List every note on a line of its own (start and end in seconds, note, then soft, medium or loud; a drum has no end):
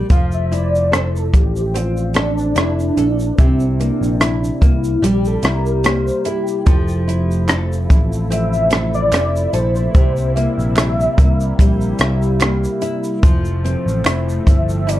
0.00 0.19 A#3 medium
0.00 0.51 E4 medium
0.10 1.29 F1 medium
0.10 3.38 F3 medium
0.10 0.91 A4 medium
0.10 0.32 F5 loud
0.10 kick loud
0.10 closed hi-hat medium
0.10 shaker medium
0.32 0.53 E5 loud
0.32 shaker soft
0.51 2.56 E4 medium
0.51 0.95 D5 loud
0.51 closed hi-hat soft
0.51 shaker soft
0.75 shaker soft
0.92 2.14 A4 medium
0.92 1.19 C5 loud
0.92 cross-stick medium
0.92 closed hi-hat medium
0.92 shaker medium
1.16 1.34 A4 medium
1.16 shaker medium
1.33 2.52 A1 medium
1.33 1.78 G4 medium
1.33 kick medium
1.33 closed hi-hat soft
1.33 shaker soft
1.56 shaker medium
1.74 3.79 C4 medium
1.74 2.16 F4 loud
1.74 closed hi-hat medium
1.74 shaker medium
1.97 shaker soft
2.14 3.42 D4 loud
2.14 2.96 A4 medium
2.14 cross-stick loud
2.14 closed hi-hat medium
2.14 shaker medium
2.38 shaker soft
2.56 2.89 F1 medium
2.56 3.39 E4 medium
2.56 cross-stick medium
2.56 closed hi-hat medium
2.56 shaker medium
2.80 shaker medium
2.97 3.30 A#1 medium
2.97 3.47 A4 medium
2.97 closed hi-hat medium
2.97 shaker medium
3.19 shaker medium
3.38 3.89 C2 loud
3.38 6.67 C3 medium
3.38 3.81 C4 loud
3.38 4.20 E4 medium
3.38 kick loud
3.38 closed hi-hat medium
3.38 shaker medium
3.60 shaker soft
3.80 4.60 A#3 medium
3.80 4.66 D4 medium
3.80 closed hi-hat soft
3.80 shaker soft
4.01 4.49 A#1 medium
4.01 shaker soft
4.20 5.43 E4 medium
4.20 cross-stick medium
4.20 closed hi-hat medium
4.20 shaker medium
4.44 shaker medium
4.61 4.94 C2 medium
4.61 5.83 A#3 medium
4.61 5.06 E4 medium
4.61 kick medium
4.61 closed hi-hat soft
4.61 shaker soft
4.84 shaker medium
5.02 5.35 A#1 medium
5.02 6.66 G3 medium
5.02 5.26 G4 medium
5.02 closed hi-hat medium
5.02 shaker medium
5.25 5.47 A4 medium
5.25 shaker medium
5.43 6.09 C2 medium
5.43 6.25 E4 medium
5.43 5.88 A#4 medium
5.43 cross-stick medium
5.43 closed hi-hat medium
5.43 shaker medium
5.66 shaker soft
5.84 6.75 A#3 medium
5.84 6.29 C5 medium
5.84 cross-stick medium
5.84 closed hi-hat medium
5.84 shaker medium
6.08 shaker medium
6.25 7.07 E4 medium
6.25 7.49 G4 medium
6.25 closed hi-hat medium
6.25 shaker medium
6.47 shaker medium
6.66 7.86 F1 loud
6.66 9.92 C3 medium
6.66 9.94 F3 medium
6.66 9.92 F3 medium
6.66 9.92 A3 medium
6.66 13.20 E4 medium
6.66 7.47 A4 medium
6.66 kick loud
6.66 closed hi-hat medium
6.66 shaker medium
6.88 shaker soft
7.08 7.89 E4 medium
7.08 closed hi-hat soft
7.08 shaker soft
7.31 shaker soft
7.48 8.70 A4 medium
7.48 cross-stick medium
7.48 clap medium
7.48 closed hi-hat medium
7.48 shaker medium
7.73 shaker medium
7.90 9.09 A1 medium
7.90 9.12 E4 medium
7.90 kick medium
7.90 closed hi-hat medium
7.90 shaker medium
8.13 shaker medium
8.30 10.35 C4 medium
8.30 8.90 E5 loud
8.30 closed hi-hat medium
8.30 shaker medium
8.53 shaker soft
8.71 9.53 A4 medium
8.71 cross-stick loud
8.71 closed hi-hat medium
8.71 shaker medium
8.94 9.50 D5 loud
8.94 shaker soft
9.12 9.45 F1 medium
9.12 9.95 E4 medium
9.12 cross-stick medium
9.12 clap medium
9.12 closed hi-hat medium
9.12 shaker medium
9.36 shaker medium
9.53 9.86 A#1 loud
9.53 10.04 A4 medium
9.53 10.32 C5 medium
9.53 closed hi-hat medium
9.53 shaker medium
9.75 shaker soft
9.94 10.46 C2 loud
9.94 13.20 C3 medium
9.94 13.23 C3 medium
9.94 13.20 G3 medium
9.94 13.20 A#3 medium
9.94 10.76 E4 medium
9.94 kick loud
9.94 closed hi-hat medium
9.94 shaker medium
10.17 shaker soft
10.35 11.16 A#3 medium
10.35 12.37 E5 loud
10.35 closed hi-hat medium
10.35 shaker soft
10.58 11.06 A#1 medium
10.58 shaker soft
10.76 11.99 E4 medium
10.76 cross-stick medium
10.76 clap medium
10.76 closed hi-hat medium
10.76 shaker medium
11.00 shaker medium
11.18 11.51 C2 medium
11.18 12.39 A#3 medium
11.18 kick medium
11.18 closed hi-hat soft
11.18 shaker medium
11.40 shaker medium
11.59 11.92 A#1 loud
11.59 13.23 G3 medium
11.59 kick medium
11.59 closed hi-hat medium
11.59 shaker medium
11.81 shaker medium
11.99 12.65 C2 medium
11.99 12.81 E4 medium
11.99 cross-stick loud
11.99 closed hi-hat medium
11.99 shaker medium
12.22 shaker soft
12.40 13.32 A#3 medium
12.40 cross-stick medium
12.40 clap medium
12.40 closed hi-hat medium
12.40 shaker medium
12.64 shaker medium
12.82 14.05 E4 medium
12.82 closed hi-hat medium
12.82 shaker medium
13.04 shaker medium
13.22 13.74 F1 loud
13.22 15.00 C3 medium
13.22 15.00 F3 medium
13.22 15.00 A3 medium
13.22 15.00 C4 medium
13.22 kick loud
13.22 closed hi-hat medium
13.22 shaker medium
13.45 shaker soft
13.64 14.46 C4 medium
13.64 closed hi-hat soft
13.64 shaker soft
13.86 14.01 A1 medium
13.86 shaker soft
14.05 14.38 F1 medium
14.05 14.87 E4 medium
14.05 cross-stick medium
14.05 clap medium
14.05 closed hi-hat medium
14.05 shaker medium
14.29 shaker medium
14.46 15.00 G1 medium
14.46 15.00 C4 medium
14.46 14.90 E5 medium
14.46 kick medium
14.46 closed hi-hat medium
14.46 shaker soft
14.69 shaker medium
14.87 15.00 E4 medium
14.87 15.00 D5 loud
14.87 closed hi-hat medium
14.87 shaker medium